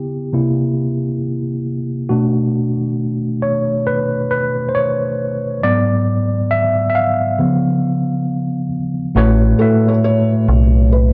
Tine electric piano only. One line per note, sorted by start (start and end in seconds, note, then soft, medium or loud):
0.00 0.34 C#3 soft
0.00 0.35 B3 soft
0.00 0.34 E4 medium
0.00 1.17 G4 medium
0.33 1.61 C3 medium
0.33 1.61 A#3 soft
0.33 1.62 E4 medium
2.09 2.73 B2 medium
2.09 2.73 A3 soft
2.09 2.74 D4 medium
2.09 3.45 F#4 medium
3.42 3.87 C#5 medium
3.87 4.27 B4 medium
4.31 4.71 B4 medium
4.69 4.74 C5 medium
4.75 5.58 C#5 medium
5.63 6.27 G#2 medium
5.63 6.27 F#3 soft
5.63 6.27 B3 medium
5.63 6.54 D5 medium
6.51 6.68 E5 medium
6.90 6.94 E5 medium
6.95 8.67 F5 medium
7.38 8.67 C#3 medium
7.38 8.67 F3 soft
7.38 8.67 B3 medium
9.15 9.51 A2 medium
9.15 9.52 A3 medium
9.15 9.52 F#4 medium
9.15 9.52 B4 medium
9.15 9.53 C#5 loud
9.59 10.91 A2 medium
9.59 10.91 A3 medium
9.59 10.92 F#4 medium
9.59 10.92 B4 medium
9.59 10.93 E5 medium